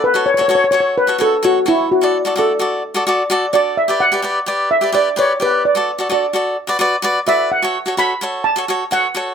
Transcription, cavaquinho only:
\new Staff \with { instrumentName = "Cavaquinho" } { \time 4/4 \key fis \phrygian \tempo 4 = 128 r16 <fis' a' cis''>16 r16 <fis' a' cis''>16 <fis' a' cis''>16 r16 <fis' a' cis''>8 r16 <fis' a' cis''>16 <fis' a' cis''>16 r16 <fis' a' cis''>16 r16 <fis' a' cis''>8 | r16 <fis' a' d''>16 r16 <fis' a' d''>16 <fis' a' d''>16 r16 <fis' a' d''>8 r16 <fis' a' d''>16 <fis' a' d''>16 r16 <fis' a' d''>16 r16 <fis' a' d''>8 | r16 <g' b' d''>16 r16 <g' b' d''>16 <g' b' d''>16 r16 <g' b' d''>8 r16 <g' b' d''>16 <g' b' d''>16 r16 <g' b' d''>16 r16 <g' b' d''>8 | r16 <fis' a' d''>16 r16 <fis' a' d''>16 <fis' a' d''>16 r16 <fis' a' d''>8 r16 <fis' b' d''>16 <fis' b' d''>16 r16 <fis' b' d''>16 r16 <fis' b' d''>8 |
r16 <fis' a' cis''>16 r16 <fis' a' cis''>16 <fis' a' cis''>16 r16 <fis' a' cis''>8 r16 <fis' a' cis''>16 <fis' a' cis''>16 r16 <fis' a' cis''>16 r16 <fis' a' cis''>8 | }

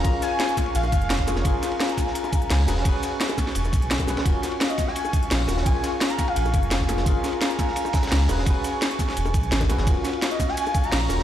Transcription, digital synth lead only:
\new Staff \with { instrumentName = "Digital synth lead" } { \time 4/4 \key ees \minor \tempo 4 = 171 r8 aes''8 r4 f''4. r8 | r1 | r1 | r4 r16 ees''8 aes''8 r4. r16 |
aes''8 r8. bes''16 bes''16 f''8. r4. | r1 | r1 | r4 r16 ees''8 aes''8 r8 bes''8 r16 bes''8 | }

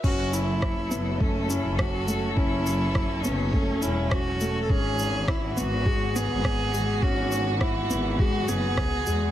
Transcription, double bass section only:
\new Staff \with { instrumentName = "Double bass section" } { \clef bass \time 4/4 \key fis \minor \tempo 4 = 103 fis,,4~ fis,,16 r16 fis,,4 r16 fis,,8 r8. | fis,,4~ fis,,16 r16 fis,,8. r16 e,,16 r4 r16 | gis,,4~ gis,,16 r16 gis,,4 r16 gis,,8 r8. | gis,,4~ gis,,16 r16 gis,,8. r16 fis,,16 r16 cis,16 r16 e,16 r16 | }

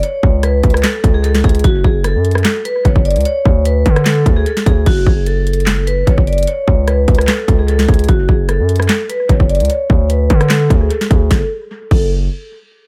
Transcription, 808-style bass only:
\new Staff \with { instrumentName = "808-style bass" } { \clef bass \time 4/4 \key fis \minor \tempo 4 = 149 r8 cis,4 cis,8 r8 cis,4 cis,8 | fis,,8 fis,,8. fis,8. r4 fis,,16 fis,,8 cis,16 | r8 d,4 d4 d,8 r8 d,8 | fis,,8 fis,,2~ fis,,8 fis,,16 fis,,8. |
r8 cis,4 cis,8 r8 cis,4 cis,8 | fis,,8 fis,,8. fis,8. r4 fis,,16 fis,,8 cis,16 | r8 d,4 d4 d,8 r8 d,8 | fis,,16 r4 r16 fis,,4 r4. | }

